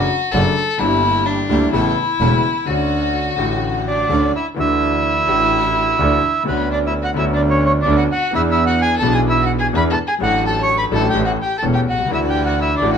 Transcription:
Already playing: violin F#4
0.32 double bass F#1, grand piano F#2 C#3 F#3 A3 D4, string section C#4 D4 F#4, violin A4
0.78 double bass G1, grand piano G1 G2 D3 G3 A#3, string section A#3 E4 G4, violin E4
0.82 grand piano E4
1.26 violin D4
1.49 double bass D2, grand piano D2 D3 G3 A#3 E4, string section A#3 E4 G4
1.73 grand piano A1 A2 C#3 A3 B3 E4, double bass A1, string section B3 C#4 A4, violin E4
2.20 double bass E1, grand piano E1 E2 C#3 A3 B3 E4, string section B3 C#4 A4
2.66 grand piano D2 D3 A3 C#4, double bass D2, string section C#4 F#4, violin F#4
2.70 grand piano F#4
3.36 grand piano A1 A2 D3 A3 C#4 F#4, double bass A1, string section C#4 F#4
3.87 violin D4, bandoneon D5
4.09 grand piano D2 D3 A3 C#4 F#4, double bass D2, string section C#4 D4 F#4
4.35 violin E4, bandoneon E5
4.54 grand piano D2 D3 E3 A3 D4, double bass D2
4.59 violin E4, grand piano F#4, bandoneon E5
5.26 grand piano A1 A2 E3 A3 D4 F#4, double bass A1
5.98 double bass D2, grand piano D2 D3 E3 A3 D4 F#4
6.45 grand piano D2 D3 B3 C#4 F#4, double bass D2, violin B3, bandoneon B4
6.71 violin D4, bandoneon D5
6.87 violin E4, bandoneon E5
7.02 violin F#4, bandoneon F#5
7.14 grand piano D2 D3 B3 C#4 F#4, double bass D2, violin E4
7.18 bandoneon E5
7.34 violin D4, bandoneon D5
7.49 violin C#4, bandoneon C#5
7.65 violin C#4, bandoneon C#5
7.81 violin D4, bandoneon D5
7.86 grand piano D2 D3 B3 C#4 F#4, double bass D2
7.97 violin F#4, bandoneon F#5
8.12 violin F#4, bandoneon F#5
8.31 double bass E2, grand piano E2 E3 B3 D4, violin E4
8.35 grand piano G#4, bandoneon E5
8.50 violin E4, bandoneon E5
8.66 violin F#4, bandoneon F#5
8.81 violin G#4, bandoneon G#5
8.97 grand piano E3, violin A4, bandoneon A5
9.02 grand piano B1 B2 B3 D4 G#4, double bass B1
9.12 violin G#4, bandoneon G#5
9.28 violin E4, bandoneon E5
9.42 violin F#4, bandoneon F#5
9.59 violin G#4, bandoneon G#5
9.73 double bass E2, grand piano E2 E3 B3 D4 G#4, violin B4
9.77 bandoneon B5
9.90 violin A4, bandoneon A5
10.07 violin G#4, bandoneon G#5
10.18 double bass A1, grand piano A1 A2 F#3 A3 D4 A4
10.23 violin F#4, bandoneon F#5
10.46 violin A4, bandoneon A5
10.61 violin C#5, bandoneon C#6
10.77 violin B4, bandoneon B5
10.91 double bass A1, grand piano A1 A2 F#3 A3 D4 A4, violin A4, bandoneon A5
11.09 violin G4, bandoneon G5
11.15 grand piano A1 A2 E3 A3 C#4 A4, double bass A1
11.25 violin F#4, bandoneon F#5
11.42 violin G4, bandoneon G5
11.57 violin A4, bandoneon A5
11.63 double bass E1, grand piano E1 E2 E3 A3 C#4 A4
11.73 violin G4, bandoneon G5
11.88 double bass C2, violin F#4, bandoneon F#5
11.93 grand piano B1
11.99 grand piano C2
12.06 grand piano C#2 E3
12.10 grand piano D2 D3 A3 D4 F#4, double bass D2, string section D4 E4 F#4, violin E4, bandoneon E5
12.30 violin G4, bandoneon G5
12.45 violin F#4, bandoneon F#5
12.61 violin E4, bandoneon E5
12.76 grand piano E3, violin D4, bandoneon D5
12.81 grand piano A1 A2 A3 D4 F#4, double bass A1, string section D4 E4 F#4
12.92 violin F#4, bandoneon F#5

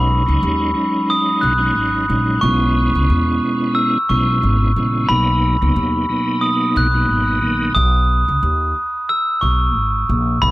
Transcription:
Already playing: upright bass B1, tonewheel organ F#3 G#3 C#4 D#4, glockenspiel B5
0.26 upright bass C#2, tonewheel organ F#3 G#3 C#4 D#4
0.43 upright bass D#2
0.74 tonewheel organ F#3 G#3 C#4 D#4
1.10 glockenspiel D#6
1.41 upright bass B1, glockenspiel F#6
1.58 tonewheel organ F#3 G#3 C#4 D#4
1.74 upright bass G#1, tonewheel organ F#3 G#3 C#4 D#4
2.08 upright bass A#1, tonewheel organ F#3 G#3 C#4 D#4
2.41 upright bass B1, tonewheel organ B2 G#3 B3 C#4 E4, glockenspiel C#6
2.95 upright bass C#2
3.10 upright bass E2
3.75 glockenspiel E6
4.09 upright bass B1, tonewheel organ B2 G#3 B3 C#4 E4, glockenspiel C#6
4.40 upright bass G#1, tonewheel organ B2 G#3 B3 C#4 E4
4.76 upright bass A#1, tonewheel organ C#3 G#3 B3 C#4 E4
5.08 upright bass B1, tonewheel organ B2 F#3 A#3 B3 D#4, glockenspiel B5
5.61 upright bass C#2, tonewheel organ B2 F#3 A#3 B3 D#4
5.76 upright bass D#2
6.08 tonewheel organ B2 F#3 A#3 B3 D#4
6.41 glockenspiel D#6
6.76 upright bass B1, glockenspiel F#6
6.94 tonewheel organ B2 F#3 A#3 B3 D#4
7.08 upright bass G#1, tonewheel organ B2 F#3 A#3 B3 D#4
7.41 upright bass A#1, tonewheel organ D#3 F#3 A#3 B3 D#4
7.75 upright bass B1, glockenspiel D#6
8.28 upright bass C#2
8.43 upright bass D#2
9.09 glockenspiel E6
9.41 upright bass B1, glockenspiel C#6
9.76 upright bass G#1
10.09 upright bass A#1
10.42 upright bass B1, glockenspiel B5

